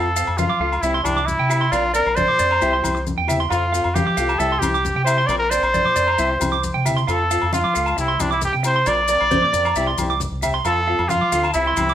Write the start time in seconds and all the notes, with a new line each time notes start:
Already playing: F2 A4
0.16 C4 F5, muted steel-string acoustic guitar stroke, maracas
0.27 F2, low agogo
0.37 F4 F5, high conga, maracas
0.50 F3 D6
0.60 C#2 F4 A4 F5, muted steel-string acoustic guitar stroke, muted conga
0.72 muted clean electric guitar stroke, low agogo, maracas
0.82 C2 G3 C4 E4 G4 E5, muted conga, maracas
0.94 C6
1.04 C2 C4 D4 E4 G4, high conga, low agogo, maracas
1.17 D6, maracas
1.26 E4, high conga, maracas
1.39 C3 G5
1.49 C4 E4 G4 E5, low agogo, maracas
1.61 C6
1.71 A#1 F3 C4 D4 F4 A#4 D5, muted conga, low agogo, maracas
1.94 C4 D4 A#4 D5, maracas
2.06 A#1, low agogo
2.16 C5 D5, high conga, maracas
2.28 A#2 D6
2.38 F2 C4 D4 A#4 D5, muted conga, maracas
2.51 A#5, low agogo
2.60 C2 G3 C4 E4 G4 E5, muted conga, maracas
2.73 C6
2.82 C2 C4 E4 G4, muted conga, high conga, low agogo, maracas
2.95 muted clean electric guitar stroke, maracas
3.07 high conga, maracas
3.18 E2 G5
3.27 C4 E4 G4 E5, low conga, low agogo, maracas
3.40 C6
3.50 F2 F3 C4 F4 A4 F5, muted conga, low agogo, maracas
3.72 C4 F4 A4 F5, maracas
3.84 F2, low agogo
3.94 G4 F5, high conga, maracas
4.07 F3 D6
4.17 C2 C4 F4 A4 F5, maracas
4.29 A5, low agogo, maracas
4.39 C2 G3 C4 E4 G4 A4 E5, muted conga, maracas
4.52 C6
4.59 C2 E4 G4, muted conga, high conga, maracas
4.63 C4, low agogo
4.74 D6, maracas
4.85 high conga, maracas
4.96 C3 G5
5.04 C4 E4 G4 C5 E5, low agogo, maracas
5.18 C6
5.27 A#1 F3 C4 D4 A#4 D5, muted clean electric guitar stroke, muted conga, low agogo, maracas
5.38 A#4
5.50 C4 D4 A#4 C5 D5, maracas
5.62 A#1, low agogo, maracas
5.74 D5, high conga, maracas
5.85 A#2 D6
5.95 F2 C4 D4 A#4 D5, muted conga, maracas
6.07 A#5, low agogo
6.18 C2 G3 C4 E4 G4 E5, muted conga, maracas
6.29 muted clean electric guitar stroke
6.40 C2 C4 E4 G4, muted conga, high conga, low agogo, maracas
6.52 D6, maracas
6.63 high conga, maracas
6.74 C3 G5
6.85 C4 E4 G4 E5, low conga, low agogo, maracas
6.97 C6, maracas
7.07 F2 F3 C4 F4 A4 F5, muted conga, low agogo, maracas
7.31 C4 F4 A4 F5, maracas
7.42 F2, low agogo
7.53 F4 F5, high conga, maracas
7.64 F3 D6
7.75 C#2 A4 F5, muted conga, maracas
7.86 A5, low agogo, maracas
7.97 C2 G3 C4 E4 G4, muted clean electric guitar stroke, muted conga, maracas
8.08 C6
8.19 C2 C4 D4 E4 G4, muted conga, high conga, low agogo, maracas
8.31 E4 D6, maracas
8.42 G4, high conga, maracas
8.53 C3 G5
8.63 C4 E4 G4 C5, muted clean electric guitar stroke, low agogo, maracas
8.76 C6
8.86 A#1 F3 C4 D4 A#4 D5, muted conga, low agogo, maracas
9.08 C4 D4 A#4 D5, maracas
9.21 A#1, low agogo
9.31 C5, high conga, maracas
9.42 A#2 D6
9.53 F2 C4 D4 A#4 D5, muted conga, maracas
9.65 A#5, low agogo, maracas
9.76 C2 G3 C4 E4 G4 E5, muted conga, maracas
9.87 C6
9.98 C2 C4 E4 G4, muted conga, high conga, low agogo, maracas
10.10 D6, maracas
10.20 high conga, maracas
10.31 C2
10.42 C4 G4 E5, muted steel-string acoustic guitar stroke, low conga, low agogo, maracas
10.54 C6
10.65 F2 F3 C4 F4 A4 F5, muted conga, low agogo, maracas
10.87 C4 F4 A4 F5
10.99 F2, low agogo
11.09 F4 F5, high conga, maracas
11.21 F3 D6
11.32 D2 C4 F4 A4 F5, muted conga, maracas
11.43 A5, low agogo, maracas
11.54 C2 G3 C4 E4 G4 E5, muted conga, maracas
11.67 C6
11.77 C2 C4 E4 G4, muted conga, high conga, low agogo, maracas
11.89 D6, maracas